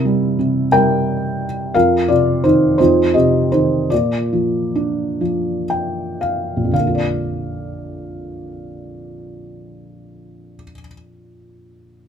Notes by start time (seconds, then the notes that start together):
Already playing: C3 E4 A#4
0.05 G3
0.39 C3
0.72 G3 A#4 G5
1.74 F2 A#4 F5
2.08 C3 F4 D5
2.44 D#3 D#4 C5
2.78 F2 D#4 C5
3.14 C3 G4 D#5
3.52 D#3 D#4 C5
3.90 A#2 F4 D5
4.33 F3
4.75 D4
5.21 F3
5.70 G5
6.21 F5
6.56 A#1
6.64 F2
6.71 D3 F5
6.79 A#3
6.87 F4
6.95 D5